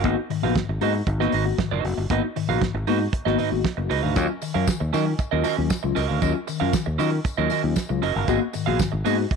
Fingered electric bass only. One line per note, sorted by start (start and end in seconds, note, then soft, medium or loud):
0.04 0.14 G#1 loud
0.44 0.53 A#1 medium
0.69 0.78 G#1 medium
0.82 1.00 G#2 loud
1.07 1.26 G#1 loud
1.33 1.52 G#1 medium
1.72 1.81 F#1 medium
1.84 1.94 F#1 medium
1.98 2.07 G1 medium
2.10 2.20 G#1 loud
2.49 2.58 A#1 medium
2.74 2.84 G#1 loud
2.87 3.06 G#2 medium
3.26 3.36 G#1 medium
3.52 3.62 G#1 medium
3.78 3.87 F#1 medium
3.91 4.00 C#2 medium
4.04 4.17 D2 medium
4.17 4.26 D#2 medium
4.55 4.65 F#2 medium
4.81 4.90 D#2 loud
4.94 5.13 D#3 medium
5.33 5.42 D#2 medium
5.58 5.68 D#2 medium
5.84 5.93 C#2 medium
5.97 6.06 C#2 medium
6.10 6.19 D2 medium
6.22 6.32 D#2 loud
6.61 6.71 F#2 medium
6.87 6.96 D#2 medium
7.00 7.18 D#3 medium
7.38 7.48 D#2 medium
7.64 7.73 D#2 medium
7.90 7.99 C#2 medium
8.03 8.12 F#1 medium
8.16 8.25 G1 medium
8.28 8.38 G#1 loud
8.67 8.77 A#1 medium
8.93 9.03 G#1 medium
9.06 9.25 G#2 medium